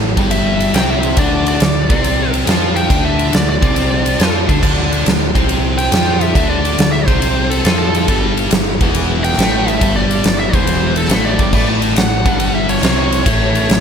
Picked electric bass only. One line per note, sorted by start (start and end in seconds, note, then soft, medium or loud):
0.00 0.15 A1 medium
0.17 0.70 G1 medium
0.74 1.14 C2 medium
1.17 1.57 D2 loud
1.61 1.88 D2 medium
1.90 2.43 C2 medium
2.47 2.87 F2 medium
2.90 3.30 D2 loud
3.33 3.60 D2 medium
3.62 4.15 C2 medium
4.20 4.47 F2 medium
4.49 4.62 D2 medium
4.63 5.03 D2 medium
5.06 5.33 D2 medium
5.36 5.89 C2 loud
5.92 6.32 F2 medium
6.35 6.75 D2 medium
6.78 7.06 D2 medium
7.08 7.61 C2 medium
7.65 8.05 F2 medium
8.08 8.48 G1 medium
8.51 8.79 G1 medium
8.81 9.34 E1 loud
9.38 9.78 A1 medium
9.81 10.21 G1 loud
10.24 10.51 G1 medium
10.53 11.06 E1 medium
11.10 11.37 A1 medium
11.39 11.52 G1 loud
11.53 11.93 A1 medium
11.96 12.24 A1 medium
12.26 12.79 G1 medium
12.82 13.22 C2 medium
13.26 13.66 A1 medium
13.69 13.80 A1 medium